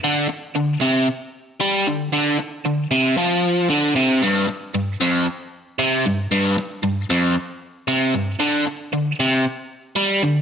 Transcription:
\new Staff \with { instrumentName = "Overdriven electric guitar" } { \clef bass \time 4/4 \key c \lydian \tempo 4 = 115 d8 r8 d8 c8 r4 g8 d8 | d8 r8 d8 c8 f4 d8 c8 | g,8 r8 g,8 f,8 r4 c8 g,8 | g,8 r8 g,8 f,8 r4 c8 g,8 |
d8 r8 d8 c8 r4 g8 d8 | }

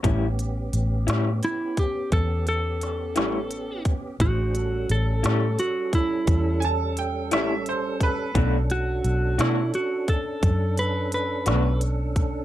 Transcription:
<<
  \new Staff \with { instrumentName = "Upright piano" } { \time 12/8 \key a \mixolydian \tempo 4. = 58 r1. | r2. r8 <gis'' a''>8 g''8 e''8 c''8 b'8~ | b'16 r1 r4. r16 | }
  \new Staff \with { instrumentName = "Electric slide guitar" } { \time 12/8 \key a \mixolydian r2 e'8 g'8 a'8 a'2 r8 | fis'4 a'4 fis'8 e'4 r2 r8 | r8 fis'4 e'8 fis'8 a'4 b'8 b'4 r4 | }
  \new Staff \with { instrumentName = "Tonewheel organ" } { \time 12/8 \key a \mixolydian <b cis' g'>1. | <d' gis' c''>8 <g cis' a'>1~ <g cis' a'>4. | <cis' d' a'>1. | }
  \new Staff \with { instrumentName = "Clean electric guitar" } { \time 12/8 \key a \mixolydian <a, g cis' e'>8 r4 <a, g cis' e'>8 r2 r8 <a, g cis' e'>8 r4 | r4. <a, g cis' e'>8 r2 r8 <a, g cis' e'>8 r4 | <b, a d' fis'>8 r4 <b, a d' fis'>8 r2 r8 <b, a d' fis'>8 r4 | }
  \new Staff \with { instrumentName = "Fingered electric bass" } { \clef bass \time 12/8 \key a \mixolydian a,,4 a,,8 a,8 r4 e,4. a,,4. | a,,4 a,,8 a,8 r4 e,4. a,,4. | b,,4 b,,8 b,8 r4 fis,4. b,,4. | }
  \new DrumStaff \with { instrumentName = "Drums" } \drummode { \time 12/8 <hh bd>8 hh8 hh8 <hh sn>8 hh8 <hh bd>8 <hh bd>8 hh8 <hh sn>8 <hh sn>8 hh8 <hh bd>8 | <hh bd>8 hh8 hh8 <hh sn>8 hh8 <hh bd>8 <hh bd>8 hh8 hh8 <hh sn>8 hh8 <hh bd>8 | <hh bd>8 hh8 hh8 <hh sn>8 hh8 <hh bd>8 <hh bd>8 hh8 hh8 <hh sn>8 hh8 <hh bd>8 | }
>>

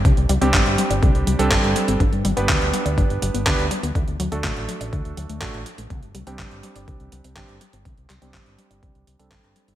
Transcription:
<<
  \new Staff \with { instrumentName = "Electric grand piano" } { \time 4/4 \key c \lydian \tempo 4 = 123 r8. <g c' d' g'>2 <g c' d' a'>4~ <g c' d' a'>16 | r8. <b d' g' b'>2~ <b d' g' b'>16 <b d' g' b'>8 r8 | r8. <a d' fis' a'>2~ <a d' fis' a'>16 <a d' fis' a'>8 r8 | r8. <g c' d' g'>2~ <g c' d' g'>16 <g c' d' g'>8 r8 |
r8. <g c' d' g'>2 <g c' d' a'>4~ <g c' d' a'>16 | }
  \new Staff \with { instrumentName = "Synth arpeggio sound" } { \clef bass \time 4/4 \key c \lydian d16 r16 g16 c'16 d16 r16 g16 d''16 d16 r16 g16 c'16 d16 r16 g16 c'16 | d16 r16 g16 b16 d16 r16 g16 d''16 d16 r16 g16 b16 d16 r16 g16 b16 | d16 r16 fis16 a16 d16 r16 fis16 d''16 d16 r16 fis16 a16 d16 r16 fis16 a16 | d16 r16 g16 c'16 d16 r16 g16 d''16 d16 r16 g16 c'16 d16 r16 g16 c'16 |
d16 r16 g16 c'16 d16 r16 g16 d''16 d16 r16 g16 c'16 d16 r16 g16 c'16 | }
  \new Staff \with { instrumentName = "Fingered electric bass" } { \clef bass \time 4/4 \key c \lydian c,16 c,16 c,16 c,16 g,,16 g,,16 r16 g,,16 c,16 c,16 c,16 c,16 g,,16 g,,16 r16 g,,16 | g,,16 g,16 g,,16 g,,16 d,16 d,16 r16 d,16 g,,16 g,,16 g,,16 g,,16 d,16 d,16 r16 d,16 | d,16 d,16 d,16 d,16 a,,16 a,,16 r16 a,,16 d,16 d,16 d,16 d,16 a,,16 a,,16 r16 a,,16 | c,16 g,,16 c,16 c,16 g,,16 g,,16 r16 g,,16 c,16 c,16 c,16 c,16 g,,16 g,,16 r16 g,,16 |
c,16 c,16 c,16 c,16 g,,16 g,,16 r16 g,,16 c,16 c,16 c,16 c,16 g,,16 g,,16 r16 g,,16 | }
  \new DrumStaff \with { instrumentName = "Drums" } \drummode { \time 4/4 <hh bd>16 hh16 hh16 hh16 <hc hh bd>16 hh16 hh16 hh16 <hh bd>16 hh16 hh16 hh16 <hc hh bd>16 hh16 hh16 hh16 | <hh bd>16 hh16 hh16 hh16 <hc hh bd>16 hh16 hh16 hh16 <hh bd>16 hh16 hh16 hh16 <hc hh bd>16 hh16 hh16 hh16 | <hh bd>16 hh16 hh16 hh16 <hc hh bd>16 hh16 hh16 hh16 <hh bd>16 hh16 hh16 hh16 <hc hh bd>16 hh16 hh16 hh16 | <hh bd>16 hh16 hh16 hh16 <hc hh bd>16 hh16 hh16 hh16 <hh bd>16 hh16 hh16 hh16 <hc hh bd>16 hh16 hh16 hh16 |
<hh bd>16 hh16 <hc hh>16 hh16 <hc hh bd>16 hh16 hh16 hh16 <hh bd>16 hh16 hh16 hh16 <hc hh bd>16 hh16 hh16 hh16 | }
>>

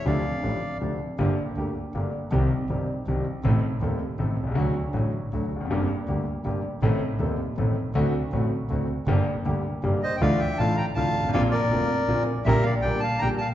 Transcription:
<<
  \new Staff \with { instrumentName = "Bandoneon" } { \time 3/4 \key d \minor \tempo 4 = 160 << { f''2 r4 | \key g \minor r2. | r2. | r2. |
r2. | r2. | r2. | r2. |
r2 r8 ees''16. g''32 | \key d \minor f''8 g''8 a''8 bes''8 a''4 | f''8 d''2 r8 | e''8 f''8 g''8 a''8 bes''8 a''8 | } \\ { d''2 r4 | r2. | r2. | r2. |
r2. | r2. | r2. | r2. |
r2 r8 c''8 | d''8 e''8 f''8 g''8 f''4 | d''8 bes'2 r8 | bes'8 d''8 d''8 f''8 g''8 f''8 | } >> }
  \new Staff \with { instrumentName = "Grand piano" } { \clef bass \time 3/4 \key d \minor <d, c d f a d'>8 r8 <a,, a, c f a d'>8 r8 <d, c d f a d'>8 r8 | \key g \minor <g,, g, d a bes g'>8 r8 <d, d a bes g'>8 r8 <g,, g, d a bes g'>8 r8 | <c, c ees g c' g'>8 r8 <g,, g, ees g c' g'>8 r8 <c, c ees g c' g'>8 r8 | <a,, a, ees a c' a'>8 r8 <ees,, ees, ees a c' a'>8 r8 <a,, a, ees a c' a'>8 r32 b,,32 c,32 cis,32 |
<d, d fis a fis'>8 r8 <a,, a, d fis a fis'>8 r8 <d, d fis a fis'>8 r32 e,32 f,32 fis,32 | <g,, g, d g bes g'>8 r8 <d, d g bes g'>8 r8 <g,, g, d g bes g'>8 r8 | <a,, a, ees a c' a'>8 r8 <ees,, ees, ees a c' a'>8 r8 <a,, a, ees a c' a'>8 r8 | <d, d a c' fis'>8 r8 <a,, a, d a c' fis'>8 r8 <d, d a c' fis'>8 r8 |
<g,, g, d g bes g'>8 r8 <d, d g bes g'>8 r8 <g,, g, d g bes g'>8 r8 | \key d \minor <d, d e a d' f'>8 r8 <a,, a, e a d' f'>8 r8 <d, d e a d' f'>8 r32 g,,32 gis,,32 a,,32 | <bes,, bes, d bes c' f'>8 r8 <f,, f, d bes c' f'>8 r8 <bes,, bes, d bes c' f'>8 r8 | <bes,, bes, d g bes g'>8 r8 <bes,, bes, d g bes g'>8 r8 <bes,, bes, d g bes g'>8 r8 | }
  \new Staff \with { instrumentName = "Double bass" } { \clef bass \time 3/4 \key d \minor d,8 r8 a,,8 r8 d,8 r8 | \key g \minor g,,8 r8 d,8 r8 g,,8 r8 | c,8 r8 g,,8 r8 c,8 r8 | a,,8 r8 ees,8 r8 a,,8 c,8 |
d,8 r8 a,,8 r8 d,8 f,,8 | g,,8 r8 d,8 r8 g,,8 r8 | a,,8 r8 ees,8 r8 a,,8 r8 | d,8 r8 a,,8 r8 d,8 r8 |
g,,8 r8 d,8 r8 g,,8 r8 | \key d \minor d,8 r8 a,,8 r8 d,8 gis,,8 | bes,,8 r8 f,,8 r8 bes,,8 r8 | bes,,8 r8 bes,,8 r8 bes,,8 r8 | }
>>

